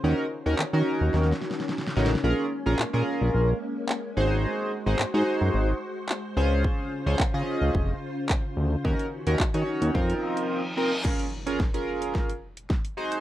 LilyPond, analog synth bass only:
\new Staff \with { instrumentName = "Analog synth bass" } { \clef bass \time 4/4 \key bes \minor \tempo 4 = 109 ees,16 r8 ees,16 ees16 ees16 r16 ees,16 ees,8 r4 a,,8 | bes,,16 r8 bes,,16 bes,16 bes,16 r16 bes,,16 bes,,8 r4 aes,,8~ | aes,,16 r8 aes,,16 aes,16 aes,16 r16 ges,16 aes,,8 r4 des,8~ | des,16 r8 des,16 des16 des16 r16 des,16 f,,8 r4 d,8 |
ees,16 r8 ees,16 ees16 ees16 r16 ees,16 f,8 r4. | r1 | }